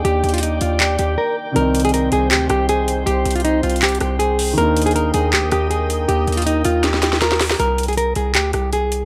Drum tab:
HH |x-----------x--x--x--x--x-----------x-----------x-----------x-----------------------------------|x-----------x--x--x--x--x-----------x-----------x-----------x-----------x-----------x-----------|x-----------x--x--x--x--x-----------x---x---x---x---x---x---x-----------x-----------o-----------|x-----------x--x--x--x--x-----------x-----------x-----------x-----------x-----------x-----------|
CP |------------------------------------------------x-----------------------------------------------|------------------------------------------------x-----------------------------------------------|------------------------------------------------x-----------------------------------------------|------------------------------------------------x-----------------------------------------------|
SD |------------------------------------------------------------------------------------------------|------------------------------------------------------------r-----------------------------------|------------------------------------------------------------r-----------------------------------|------------------------------------------------------------r-----------------------------------|

HH |x-----------x--x--x--x--x-----------x-----------x-----------x-----------x-----------o-----------|x-----------x--x--x--x--x-----------x-----------x-----------x-----------x-----------x-----------|
CP |------------------------------------------------------------------------------------------------|------------------------------------------------x-----------------------------------------------|
SD |------------------------------------------------o-----o-----o-----o-----o-----o-----o-----o-----|------------------------------------------------------------r-----------------------------------|